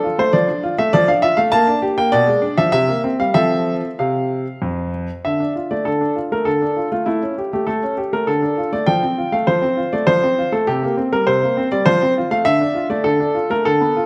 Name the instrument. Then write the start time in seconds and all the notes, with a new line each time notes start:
grand piano
Already playing: A4
0.04 F4
0.18 A3 C5
0.33 F3 D5
0.48 D4
0.63 F4
0.78 A3 E5
0.93 F3 D5
1.08 D4 F5
1.22 F4 E5
1.37 A3 F5
1.52 A#3 A5
1.67 D4
1.82 G4
1.98 A#3 G5
2.12 B2 D5
2.27 G#3
2.42 D4
2.58 F3 E5
2.72 C3 E5
2.88 A#3
3.04 C4
3.19 G3 F5
3.34 F3 C4 A4 E5
3.99 C3 F5
4.62 F2
5.25 D3 E5
5.40 D4
5.56 F4
5.71 A3 D5
5.85 D3 A4
6.01 D4
6.16 F4
6.32 A3 A#4
6.45 D3 A4
6.62 D4
6.76 F4
6.92 A3 F4
7.06 A3 E4
7.22 C#4
7.38 G4
7.53 A3 G4
7.67 A3 A4
7.83 C#4
7.98 G4
8.13 A3 A#4
8.27 D3 A4
8.42 D4
8.57 F4
8.72 A3 D5
8.87 F3 G5
9.03 C4
9.18 F4
9.32 A3 F5
9.47 F3 C5
9.62 C4
9.77 F4
9.93 A3 D5
10.07 F3 C5
10.23 C4
10.38 F4
10.52 A3 A4
10.67 C3 G4
10.83 A#3
10.97 C4
11.12 G3 A#4
11.27 C3 C5
11.43 A#3
11.57 C4
11.72 G3 D5
11.86 F3 C5
12.02 C4
12.17 F4
12.31 A3 F5
12.45 D3 E5
12.61 D4
12.75 F4
12.90 A3 D5
13.04 D3 A4
13.20 D4
13.35 F4
13.50 A3 A#4
13.65 D3 A4
13.81 B3
13.96 F4